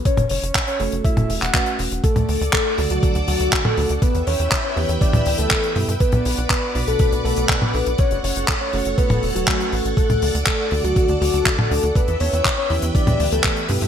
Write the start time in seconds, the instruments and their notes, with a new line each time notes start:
0.05 soft synth lead C#5, kick, closed hi-hat
0.17 analog synth bass F#1, closed hi-hat, high tom
0.29 analog synth bass F#1, soft synth lead C#5, open hi-hat
0.43 analog synth bass F#1, closed hi-hat
0.55 kick, clap, closed hi-hat
0.67 soft synth lead C#5, closed hi-hat
0.80 analog synth bass F#1, tine electric piano A3 C#4 F#4 A4, open hi-hat
0.92 analog synth bass F#1, closed hi-hat
1.04 soft synth lead E5, kick, closed hi-hat
1.17 analog synth bass E1, closed hi-hat, high tom
1.29 analog synth bass E1, open hi-hat
1.42 analog synth bass E1, soft synth lead F#5, clap, closed hi-hat
1.54 tine electric piano A3 C#4 F#4 B4, kick, clap, closed hi-hat
1.66 closed hi-hat
1.79 analog synth bass E1, open hi-hat
1.91 analog synth bass E1, closed hi-hat
2.04 soft synth lead A4, string machine A4 D5 F#5 D6, kick, closed hi-hat
2.16 analog synth bass D2, closed hi-hat, high tom
2.28 analog synth bass D2, open hi-hat
2.41 analog synth bass D2, closed hi-hat
2.53 soft synth lead A4, kick, clap, closed hi-hat
2.78 analog synth bass D2, tine electric piano D3 A3 D4 F#4 A4, open hi-hat
2.90 analog synth bass D2, soft synth lead F#4, closed hi-hat
3.03 kick, closed hi-hat
3.15 analog synth bass D2, closed hi-hat
3.28 analog synth bass D2, soft synth lead F#4, open hi-hat
3.40 analog synth bass D2, closed hi-hat
3.52 kick, clap, closed hi-hat
3.65 soft synth lead A4, high tom
3.77 analog synth bass D2, tine electric piano A3 D4 F#4 A4, open hi-hat
3.89 analog synth bass D2, closed hi-hat
4.02 string machine B4 E5 G5 E6, soft synth lead B4, kick, closed hi-hat
4.15 analog synth bass E2, closed hi-hat
4.27 analog synth bass E2, soft synth lead C#5, open hi-hat
4.39 analog synth bass E2, closed hi-hat
4.52 kick, clap, closed hi-hat
4.64 soft synth lead C#5
4.76 analog synth bass E2, tine electric piano E3 B3 E4 G4 B4, open hi-hat
4.89 analog synth bass E2, closed hi-hat
5.01 soft synth lead D5, kick, closed hi-hat
5.13 analog synth bass D2, closed hi-hat, high tom
5.26 analog synth bass D2, open hi-hat
5.38 analog synth bass D2, soft synth lead A4, closed hi-hat
5.51 kick, clap, closed hi-hat
5.63 closed hi-hat
5.76 analog synth bass G2, tine electric piano B2 B3 E4 G4 A4, open hi-hat
5.88 analog synth bass G2, closed hi-hat
6.00 soft synth lead B4, string machine B4 D5 F#5 D6, kick, closed hi-hat
6.12 analog synth bass B1, closed hi-hat, high tom
6.25 analog synth bass B1, open hi-hat
6.37 analog synth bass B1, closed hi-hat
6.50 soft synth lead B4, kick, clap, closed hi-hat
6.75 analog synth bass B1, tine electric piano B2 B3 D4 F#4 B4, open hi-hat
6.87 analog synth bass B1, soft synth lead A4, closed hi-hat
6.99 kick, closed hi-hat
7.12 analog synth bass B1, closed hi-hat
7.24 analog synth bass B1, soft synth lead A4, open hi-hat
7.36 analog synth bass B1, closed hi-hat
7.49 kick, clap, closed hi-hat
7.62 soft synth lead B4, high tom
7.74 analog synth bass B1, tine electric piano B3 D4 F#4 A4, open hi-hat
7.86 analog synth bass B1, closed hi-hat
7.98 string machine A4 C#5 C#6, soft synth lead C#5, kick, closed hi-hat
8.11 analog synth bass F#1, closed hi-hat
8.23 analog synth bass F#1, soft synth lead C#5, open hi-hat
8.36 analog synth bass F#1, closed hi-hat
8.48 kick, clap, closed hi-hat
8.61 soft synth lead C#5
8.73 analog synth bass F#1, tine electric piano A3 C#4 F#4 A4, open hi-hat
8.85 analog synth bass F#1, closed hi-hat
8.98 soft synth lead B4, kick, closed hi-hat
9.10 analog synth bass E1, closed hi-hat, high tom
9.23 analog synth bass E1, open hi-hat
9.35 analog synth bass E1, soft synth lead F#4, closed hi-hat
9.47 tine electric piano A3 C#4 F#4, kick, clap, closed hi-hat
9.60 closed hi-hat
9.72 analog synth bass A1, open hi-hat
9.85 analog synth bass A1, closed hi-hat
9.97 soft synth lead A4, string machine D5 D6, kick, closed hi-hat
10.10 analog synth bass D2, closed hi-hat, high tom
10.22 analog synth bass D2, open hi-hat
10.35 analog synth bass D2, closed hi-hat
10.46 soft synth lead A4, kick, clap, closed hi-hat
10.71 analog synth bass D2, tine electric piano D3 A3 D4 F#4 A4, open hi-hat
10.84 analog synth bass D2, soft synth lead F#4, closed hi-hat
10.96 kick, closed hi-hat
11.08 analog synth bass D2, closed hi-hat
11.21 analog synth bass D2, soft synth lead F#4, open hi-hat
11.34 analog synth bass D2, closed hi-hat
11.46 kick, clap, closed hi-hat
11.59 soft synth lead A4, high tom
11.71 analog synth bass D2, tine electric piano A3 D4 F#4 A4, open hi-hat
11.83 analog synth bass D2, closed hi-hat
11.95 string machine B4 E5 G5 E6, soft synth lead B4, kick, closed hi-hat
12.08 analog synth bass E2, closed hi-hat
12.20 analog synth bass E2, soft synth lead C#5, open hi-hat
12.33 analog synth bass E2, closed hi-hat
12.45 kick, clap, closed hi-hat
12.58 soft synth lead C#5
12.70 analog synth bass E2, tine electric piano E3 B3 E4 G4 B4, open hi-hat
12.82 analog synth bass E2, closed hi-hat
12.95 soft synth lead D5, kick, closed hi-hat
13.07 analog synth bass D2, closed hi-hat, high tom
13.20 analog synth bass D2, open hi-hat
13.32 analog synth bass D2, soft synth lead A4, closed hi-hat
13.44 kick, clap, closed hi-hat
13.56 closed hi-hat
13.69 analog synth bass G2, tine electric piano B2 B3 E4 G4 A4, open hi-hat
13.81 analog synth bass G2, closed hi-hat